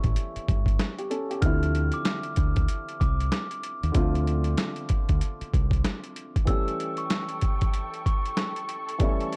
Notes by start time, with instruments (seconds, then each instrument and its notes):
Already playing: grand piano E3 G3 A3 C#4 E4
0.03 fingered electric bass A1, kick, closed hi-hat
0.16 closed hi-hat
0.36 muted fingered electric bass stroke, closed hi-hat
0.48 fingered electric bass G1, kick, closed hi-hat
0.66 kick, closed hi-hat
0.79 snare, closed hi-hat
0.98 grand piano G4, closed hi-hat
1.10 grand piano C#4 A4, closed hi-hat
1.31 grand piano G4, closed hi-hat
1.41 fingered electric bass D2, grand piano D3 E3 A3 C4, glockenspiel F6, kick, closed hi-hat
1.46 grand piano F3 E4
1.63 closed hi-hat
1.75 closed hi-hat
1.92 glockenspiel D6, closed hi-hat
2.05 snare, closed hi-hat
2.23 closed hi-hat
2.36 fingered electric bass D2, kick, closed hi-hat
2.56 kick, closed hi-hat
2.68 closed hi-hat
2.89 closed hi-hat
3.00 fingered electric bass C2, glockenspiel D6, kick, closed hi-hat
3.20 closed hi-hat
3.32 snare, closed hi-hat
3.51 closed hi-hat
3.63 closed hi-hat
3.83 fingered electric bass D#2, closed hi-hat
3.92 fingered electric bass D2, grand piano D3 F3 A3 C4, kick, closed hi-hat
3.97 grand piano F4
4.15 closed hi-hat
4.27 closed hi-hat
4.44 closed hi-hat
4.58 snare, closed hi-hat
4.76 closed hi-hat
4.89 kick, closed hi-hat
5.09 fingered electric bass D2, kick, closed hi-hat
5.21 closed hi-hat
5.41 muted fingered electric bass stroke, closed hi-hat
5.54 fingered electric bass C2, kick, closed hi-hat
5.71 kick, closed hi-hat
5.85 snare, closed hi-hat
6.04 closed hi-hat
6.16 closed hi-hat
6.36 kick, closed hi-hat
6.45 grand piano E3 G3 A3 C#4, string section A4 G5 C#6, glockenspiel E6, kick, closed hi-hat
6.50 grand piano G4
6.68 closed hi-hat
6.80 closed hi-hat
6.97 glockenspiel C#6, closed hi-hat
7.10 snare, closed hi-hat
7.29 closed hi-hat
7.41 kick, closed hi-hat
7.61 kick, closed hi-hat
7.74 closed hi-hat
7.94 closed hi-hat
8.06 glockenspiel C#6, kick, closed hi-hat
8.26 closed hi-hat
8.37 snare, closed hi-hat
8.56 closed hi-hat
8.69 closed hi-hat
8.89 closed hi-hat
8.98 grand piano E3 G3 A3 C#4, string section A5, kick, closed hi-hat
9.04 grand piano E4
9.20 closed hi-hat
9.32 closed hi-hat